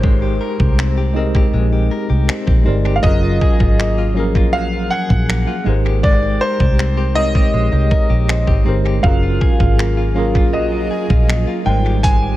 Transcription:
Already playing: G#1 G#3 D#4 G4 A#4 C5, downlifter
0.03 G#3, kick
0.22 G4
0.41 A#4
0.59 C2 G4, kick
0.78 C4, finger snap
0.98 G4
1.14 G#3 C4 D#4 G4 A#4
1.19 D#5
1.35 G4, kick
1.54 A#1 G#3
1.73 G4
1.91 A#4
2.10 C2 G4
2.28 C4, finger snap
2.47 A#1 G4, kick
2.64 G1 G#3 C4 D#4 G4 A#4
2.69 D5
2.85 G4
2.96 F5
3.02 F#1 F#3 C#4 F4 G#4 D#5, kick
3.06 A#4
3.23 F4
3.41 G#4, kick
3.60 G#1 F4, kick
3.79 A#3, finger snap
3.98 F4
4.14 F3 F#3 A#3 C#4 G#4
4.20 A#4
4.35 F4, kick
4.53 A#1 F#3 F5
4.73 F4
4.91 G#4 F#5
5.10 A#1, kick
5.29 A#3, finger snap
5.47 F4
5.64 G#1 G#3 D#4 G4 A#4
5.69 C5
5.85 G4
6.03 G#3 D5, kick
6.23 G4
6.41 A#4 C5
6.60 C2 G4, kick
6.79 C4, finger snap
6.97 G4
7.14 G#3 C4 D#4 G4 A#4 D#5
7.19 C#5
7.26 D#5
7.35 G4, kick
7.54 A#1 G#3
7.73 C2 G4
7.91 A#4, kick
8.10 A#1 G4
8.28 C4, finger snap
8.47 G#1 G4, kick
8.65 G1 G#3 C4 D#4 G4 A#4
8.69 C5
8.85 G4
9.02 F#1 F#3 C#4 F4 G#4 A#4 F5, kick
9.07 A#4
9.23 F4
9.41 G#4, kick
9.60 G#1 F4, kick
9.79 A#3, finger snap
9.97 F4
10.14 F#3 A#3 C#4 F4 G#4
10.19 A#4
10.35 F4, kick
10.53 A#1 F#3 D#5
10.72 F4
10.91 G#4
11.10 A#1 F4, kick
11.28 A#3, finger snap
11.47 F4
11.64 G#1 G3 G#3 A#3 C4 D#4 A#4 G5
11.69 C5
11.85 G4
12.03 G#3 G#5, kick, closed hi-hat
12.22 G4

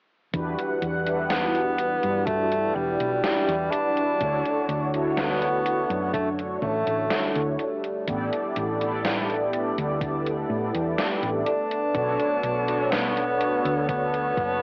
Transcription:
0.33 E2 E3 G3 D4 E4 F#4 G4 B4 F#5, kick, closed hi-hat
0.58 closed hi-hat
0.82 E2, closed hi-hat
1.05 D4 E4 F#4 G4 B4, closed hi-hat
1.30 B3, snare, closed hi-hat
1.55 closed hi-hat
1.78 closed hi-hat
2.03 G2, closed hi-hat
2.26 A3 E4, kick, closed hi-hat
2.52 closed hi-hat
2.75 E1 G3
3.00 B1, closed hi-hat
3.24 snare, closed hi-hat
3.48 E2, closed hi-hat
3.71 D4, closed hi-hat
3.97 closed hi-hat
4.20 D2 D3 A3 D4 E4 F#4 A4 C#5, kick, closed hi-hat
4.45 closed hi-hat
4.68 D2, closed hi-hat
4.93 D4 E4 F#4 A4 C#5, closed hi-hat
5.17 B3, snare, closed hi-hat
5.42 closed hi-hat
5.66 closed hi-hat
5.90 F#2, closed hi-hat
6.14 A3, kick, closed hi-hat
6.39 closed hi-hat
6.62 A1 A3, kick
6.87 A1, closed hi-hat
7.11 snare, closed hi-hat
7.36 D2, closed hi-hat
7.59 G3 D4, closed hi-hat
7.84 closed hi-hat
8.07 A1 B3 E4 G4 A4 D5, kick, closed hi-hat
8.33 closed hi-hat
8.56 A1, closed hi-hat
8.79 B3 E4 G4 A4 D5, closed hi-hat
9.04 snare, closed hi-hat
9.30 closed hi-hat
9.53 closed hi-hat
9.78 D2, closed hi-hat
10.01 kick, closed hi-hat
10.26 closed hi-hat
10.50 A2
10.74 E2, closed hi-hat
10.98 snare, closed hi-hat
11.23 A1, closed hi-hat
11.46 B3 D4, closed hi-hat
11.72 closed hi-hat
11.94 B1 B3 D4 F#4 A4 C#5, kick, closed hi-hat
12.20 closed hi-hat
12.44 B1, closed hi-hat
12.66 B3 D4 F#4 A4 C#5, closed hi-hat
12.91 B3, snare, closed hi-hat
13.17 closed hi-hat
13.41 closed hi-hat
13.65 D2, closed hi-hat
13.89 B3, kick, closed hi-hat
14.14 closed hi-hat
14.37 F#1, kick, closed hi-hat

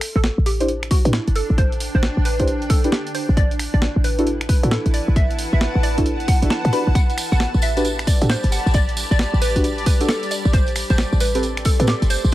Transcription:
Already playing: D4
0.01 finger snap, open hi-hat
0.16 A1 A4
0.24 finger snap, snare
0.38 A1
0.46 G4, open hi-hat
0.60 D4 E4 G4 C5 G5, closed hi-hat
0.68 closed hi-hat
0.83 finger snap, closed hi-hat
0.91 F#4, kick, open hi-hat
1.05 A2 D4 E4 G4 B4, closed hi-hat
1.13 E4, snare
1.28 G1, closed hi-hat
1.36 A4, open hi-hat
1.50 A1
1.58 C5, kick, closed hi-hat
1.72 closed hi-hat
1.80 open hi-hat
1.95 A1 C5
2.03 finger snap, snare
2.17 A1
2.25 B4, open hi-hat
2.39 D4 E4 G4 C5, kick, closed hi-hat
2.47 closed hi-hat
2.62 closed hi-hat
2.70 A4, kick, open hi-hat
2.84 D4 E4 G4 B4, closed hi-hat
2.92 G4, snare
3.07 closed hi-hat
3.15 E4 C5, open hi-hat
3.29 A1
3.37 D5, kick, closed hi-hat
3.44 A5
3.51 B4, closed hi-hat
3.59 F#5, finger snap, open hi-hat
3.74 A1 D5
3.82 finger snap, snare
3.96 A1
4.04 B4, open hi-hat
4.19 D4 E4 F#4 A4, closed hi-hat
4.27 closed hi-hat
4.41 finger snap, closed hi-hat
4.49 B4, kick, open hi-hat
4.63 A2 D4 E4 F#4 A4, closed hi-hat
4.71 A4, snare
4.86 A1, closed hi-hat
4.94 D5, open hi-hat
5.08 A1
5.16 E5, kick, closed hi-hat
5.31 closed hi-hat
5.39 open hi-hat
5.53 A1 E5
5.61 finger snap, snare
5.75 A1
5.83 D5, open hi-hat
5.98 D4 E4 F#4 A4, kick, closed hi-hat
6.06 closed hi-hat
6.20 closed hi-hat
6.28 F#5, kick, open hi-hat
6.42 A1 D4 E4 F#4 A4, closed hi-hat
6.50 A5, snare
6.65 A2, closed hi-hat
6.73 D4 F#4 G4 B4 B5, open hi-hat
6.87 A1 D5
6.95 F#5, kick, closed hi-hat, tambourine
7.10 closed hi-hat, tambourine
7.15 B5, finger snap, open hi-hat, tambourine
7.32 A1 F#5, tambourine
7.40 finger snap, snare, tambourine
7.54 A1, tambourine
7.62 E5, open hi-hat, tambourine
7.77 D4 F#4 G4 B4, closed hi-hat, tambourine
7.85 closed hi-hat, tambourine
7.99 finger snap, closed hi-hat, tambourine
8.07 D5, kick, open hi-hat, tambourine
8.21 A2 D4 F#4 G4 A4, closed hi-hat, tambourine
8.30 C5, snare, tambourine
8.43 G1, closed hi-hat, tambourine
8.52 F#5, open hi-hat, tambourine
8.66 A1, tambourine
8.74 D5, kick, closed hi-hat, tambourine
8.89 closed hi-hat, tambourine
8.97 open hi-hat, tambourine
9.11 A1 D5, tambourine
9.19 finger snap, snare, tambourine
9.33 A1, tambourine
9.41 B4, open hi-hat, tambourine
9.56 D4 F#4 G4 B4, kick, closed hi-hat, tambourine
9.64 closed hi-hat, tambourine
9.78 closed hi-hat, tambourine
9.86 B4, kick, open hi-hat, tambourine
10.01 D4 F#4 G4 A4, closed hi-hat, tambourine
10.09 A4, snare, tambourine
10.23 closed hi-hat, tambourine
10.31 A4 D5, open hi-hat, tambourine
10.45 A1, tambourine
10.53 C5, kick, closed hi-hat, tambourine
10.59 C6
10.67 closed hi-hat, tambourine
10.76 finger snap, open hi-hat, tambourine
10.90 A1 C5, tambourine
10.98 finger snap, snare, tambourine
11.13 A1, tambourine
11.20 B4 E5, open hi-hat, tambourine
11.35 C4 G4 A4 B4, closed hi-hat, tambourine
11.43 closed hi-hat, tambourine
11.57 finger snap, closed hi-hat, tambourine
11.65 A4, kick, open hi-hat, tambourine
11.80 A2 C4 G4 A4 B4, closed hi-hat, tambourine
11.87 G4, snare, tambourine
12.02 G1, closed hi-hat, tambourine
12.10 C5, open hi-hat, tambourine
12.24 A1, tambourine

